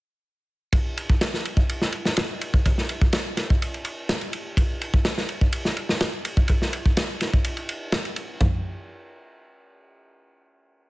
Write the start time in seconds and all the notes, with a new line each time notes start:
0.73 kick, ride
0.97 ride
1.10 kick
1.21 snare, ride
1.34 snare
1.45 ride
1.57 kick
1.69 ride
1.82 snare
1.92 ride
2.05 snare
2.17 snare, ride
2.41 ride
2.54 kick
2.65 kick, ride
2.78 snare
2.89 ride
3.01 kick
3.13 snare, ride
3.37 snare, ride
3.50 kick
3.62 ride
3.74 ride
3.85 ride
4.09 snare, ride
4.21 ride
4.33 ride
4.57 kick, ride
4.81 ride
4.94 kick
5.05 snare, ride
5.18 snare
5.29 ride
5.41 kick
5.53 ride
5.65 snare
5.77 ride
5.89 snare
6.01 snare, ride
6.25 ride
6.37 kick
6.48 kick, ride
6.62 snare
6.73 ride
6.86 kick
6.97 snare, ride
7.21 snare, ride
7.33 kick
7.44 ride
7.57 ride
7.69 ride
7.92 snare, ride
8.05 ride
8.16 ride
8.41 kick, floor tom